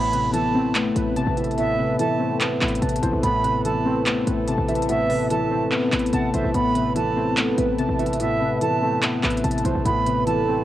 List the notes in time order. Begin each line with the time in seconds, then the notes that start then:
Already playing: A1 A2 A3 B3 E4 A4 B4 B5
0.13 C3 B4, closed hi-hat
0.33 E3 A4 A5, closed hi-hat
0.55 A3 C4
0.75 A3 B3, clap, closed hi-hat
0.96 A1 A2 B4, closed hi-hat
1.16 C3 A5, closed hi-hat
1.27 A1
1.37 E3 E5, closed hi-hat
1.44 closed hi-hat
1.51 closed hi-hat
1.58 A2 B3 E5, closed hi-hat
1.78 C3 B4
1.99 E3 A4 A5, closed hi-hat
2.20 A3 C4
2.41 B3, clap, closed hi-hat
2.61 A1 A2 B4, clap, closed hi-hat
2.68 closed hi-hat
2.75 closed hi-hat
2.82 A1 C3 A5, closed hi-hat
2.89 closed hi-hat
2.96 closed hi-hat
3.03 A1 E3 C5, closed hi-hat
3.13 A1
3.23 A1 A2 B3 B5, closed hi-hat
3.44 C3 B4, closed hi-hat
3.65 E3 A4 A5, closed hi-hat
3.85 A3 C4
4.06 A3 B3, clap, closed hi-hat
4.27 A1 A2 B4, closed hi-hat
4.47 C3 A5, closed hi-hat
4.58 A1
4.68 E3 E5, closed hi-hat
4.75 closed hi-hat
4.82 closed hi-hat
4.89 A2 B3 E5, closed hi-hat
5.10 C3 B4, open hi-hat
5.30 E3 A4 A5, closed hi-hat
5.51 A3 C4
5.71 B3, clap, closed hi-hat
5.92 A1 A2 B4, clap, closed hi-hat
5.99 closed hi-hat
6.06 closed hi-hat
6.13 A1 C3 F#5 A5, closed hi-hat
6.34 A1 E3 C5 E5, closed hi-hat
6.44 A1
6.54 A1 A2 A3 B3 B5, closed hi-hat
6.75 C3 B4, closed hi-hat
6.95 E3 A4 A5, closed hi-hat
7.17 A3 C4
7.37 A3 B3, clap, closed hi-hat
7.58 A1 A2 B4, closed hi-hat
7.78 C3 A5, closed hi-hat
7.89 A1
7.99 E3 E5, closed hi-hat
8.06 closed hi-hat
8.13 closed hi-hat
8.20 A2 B3 E5, closed hi-hat
8.40 C3 B4
8.61 E3 A4 A5, closed hi-hat
8.82 A3 C4
9.03 B3, clap, closed hi-hat
9.23 A1 A2 B4, clap, closed hi-hat
9.30 closed hi-hat
9.37 closed hi-hat
9.44 A1 C3 A5, closed hi-hat
9.51 closed hi-hat
9.58 closed hi-hat
9.65 A1 E3 C5, closed hi-hat
9.75 A1
9.85 A1 A2 A3 B3 E4 A4 B4 B5, closed hi-hat
10.06 C3 B4, closed hi-hat
10.27 E3 A4 A5, closed hi-hat
10.47 A3 C4